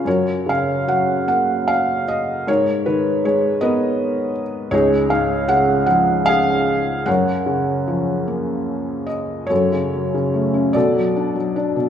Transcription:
<<
  \new Staff \with { instrumentName = "Felt piano" } { \time 6/8 \key fis \major \tempo 4. = 50 << { cis''8 eis''8 fis''8 fis''8 eis''8 dis''8 | cis''8 b'8 cis''8 dis''4 r8 | cis''8 eis''8 fis''8 fis''8 eis''4 | fis''2~ fis''8 dis''8 |
\key fis \minor cis''4. d''4. | } \\ { <fis' ais'>4. r4. | ais'4. <ais' b'>4. | <dis' gis'>4. r8 gis'4 | <ais' cis''>2~ <ais' cis''>8 r8 |
<fis' a'>4. <fis' a'>4. | } >> }
  \new Staff \with { instrumentName = "Felt piano" } { \clef bass \time 6/8 \key fis \major fis,8 cis8 fis8 ais4. | gis,8 dis8 gis8 b4. | cis,8 gis,8 cis8 eis4. | fis,8 cis8 eis8 ais4. |
\key fis \minor fis,16 cis16 fis16 cis16 a16 cis'16 b,16 fis16 d'16 fis16 d'16 b,16 | }
>>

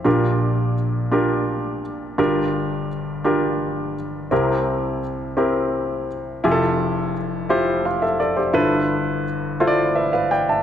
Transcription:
<<
  \new Staff \with { instrumentName = "Grand piano" } { \time 6/8 \key f \major \tempo 4. = 57 << { r2. | r2. | r2. | r2 <c'' f''>16 <a' e''>16 <a' d''>16 <g' c''>16~ |
<g' c''>16 r4. r16 <b' e''>16 <b' f''>16 <d'' g''>16 <e'' a''>16 | } \\ { <d' f' g' bes'>4 r8 <d' f' g' bes'>4 r8 | <d' f' g' bes'>4 r8 <d' f' g' bes'>4 r8 | <c' e' g' bes'>4 r8 <c' e' g' bes'>4 r8 | <e' f' g' aes' a'>4 r8 <e' f' g' c''>4 r8 |
<e' f' a' b'>4 r8 <e' f' a' c'' d''>4 r8 | } >> }
  \new Staff \with { instrumentName = "Grand piano" } { \clef bass \time 6/8 \key f \major <bes,, bes,>2. | <g,, g,>2. | <c, c>2. | <f,, f,>2. |
<g,, g,>2. | }
>>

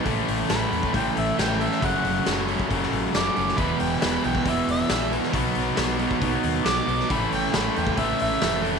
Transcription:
<<
  \new Staff \with { instrumentName = "Harmonica" } { \time 4/4 \key a \lydian \tempo 4 = 136 r4 b''4 g''8 e''8 g''8 e''8 | fis''4 r2 d'''4 | b''8 g''8 b''8 g''8 e''8 e''4 r8 | r2. d'''4 |
b''8 g''8 b''8 g''8 e''8 e''4 r8 | }
  \new Staff \with { instrumentName = "Overdriven electric guitar" } { \time 4/4 \key a \lydian <a, e a cis' a'>4 <a, e a cis' a'>8 <a cis' a'>4. <e a cis' a'>8 <a cis' a'>8 | <fis, cis fis a cis' a'>4 <fis, cis fis a cis' a'>8 <fis a cis' a'>4. <fis a cis' a'>8 <fis a cis' a'>8 | <e, b, e b e' gis'>4 <e, b, e b e' gis'>8 <e b e' gis'>4. <e b e' gis'>8 <e b e' gis'>8 | <b, fis b dis' fis'>4 <b, fis b dis' fis'>8 <b dis' fis'>4. <fis b dis' fis'>8 <b dis' fis'>8 |
<a, e a cis' a'>4 <a, e a cis' a'>8 <a cis' a'>4. <e a cis' a'>8 <a cis' a'>8 | }
  \new Staff \with { instrumentName = "Distorted electric guitar" } { \clef bass \time 4/4 \key a \lydian <a, e a>2 <a, e a>2 | <fis, cis fis>2 <fis, cis fis>2 | <e, b, e>2 <e, b, e>2 | <b, fis b>2 <b, fis b>2 |
<a, e a>2 <a, e a>2 | }
  \new Staff \with { instrumentName = "Fingered electric bass" } { \clef bass \time 4/4 \key a \lydian a,,8 a,,8 a,,8 e,8 a,,8 a,,8 a,,4 | fis,,8 fis,,8 fis,,4 fis,,8 a,,8 fis,,8 fis,,8 | e,,8 e,,8 e,,8 b,,8 e,,8 e,,8 ais,,4 | b,,8 b,,8 b,,4 b,,8 dis,8 b,,8 b,,8 |
a,,8 a,,8 a,,8 e,8 a,,8 a,,8 f,,4 | }
  \new DrumStaff \with { instrumentName = "Drums" } \drummode { \time 4/4 <hho bd>8 hho8 <hho sn>8 hho16 bd16 <hho bd>8 hho8 <hho sn>8 hho16 sn16 | <hho bd>8 hho8 <hho sn>8 hho16 bd16 <hho bd>16 sn16 hho8 <hho sn>8 hho16 sn16 | <hho bd>8 hho8 <hho sn>8 hho16 bd16 <hho bd>8 hho8 <hho sn>8 hho16 sn16 | <hho bd>8 hho8 <hho sn>8 hho16 bd16 <hho bd>8 hho8 <hho sn>8 hho16 sn16 |
<hho bd>8 hho8 <hho sn>8 hho16 bd16 <hho bd>8 hho8 <hho sn>8 hho8 | }
>>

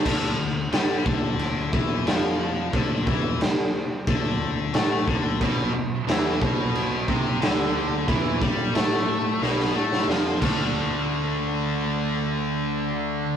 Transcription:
<<
  \new Staff \with { instrumentName = "Distorted electric guitar" } { \clef bass \time 4/4 \key d \dorian \tempo 4 = 90 r1 | r1 | b,8 b,8 e8 b,4 c8 d4 | e8 g8 a4 b,8 a8 f8 <d a d'>8~ |
<d a d'>1 | }
  \new Staff \with { instrumentName = "Distorted electric guitar" } { \clef bass \time 4/4 \key d \dorian d8 d8 g8 d4 e8 f4 | d8 e8 r4 d4 a8 d8 | b,8 b,8 e8 b,4 c8 d4 | e8 g8 a4 b,8 a8 f8 <d a d'>8~ |
<d a d'>1 | }
  \new Staff \with { instrumentName = "Picked electric bass" } { \clef bass \time 4/4 \key d \dorian d,8 d,8 g,8 d,4 e,8 f,4 | d,8 e,8 r4 d,4 a,8 d,8 | b,,8 b,,8 e,8 b,,4 c,8 d,4 | e,8 g,8 a,4 b,,8 a,8 f,8 d,8~ |
d,1 | }
  \new DrumStaff \with { instrumentName = "Drums" } \drummode { \time 4/4 <cymc bd>4 <cymc sn>8 bd8 cymc8 bd8 <cymc sn>4 | <cymc bd>8 bd8 <cymc sn>4 <cymc bd>4 <cymc sn>8 bd8 | <cymc bd>4 <cymc sn>8 bd8 cymc8 bd8 <cymc sn>4 | <cymc bd>8 bd8 <cymc sn>4 sn16 sn8 sn16 sn8 <cymc bd>8 |
r4 r4 r4 r4 | }
>>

